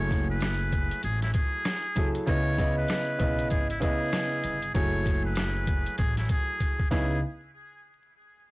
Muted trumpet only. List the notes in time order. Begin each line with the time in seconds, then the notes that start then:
Already playing: C#5
0.30 B4
1.04 G#4
1.23 E4
1.34 G#4
2.28 C#5
2.77 B4
3.51 G#4
3.70 E4
3.82 G#4
4.74 C#5
5.25 B4
5.98 G#4
6.18 E4
6.30 G#4
6.91 G#4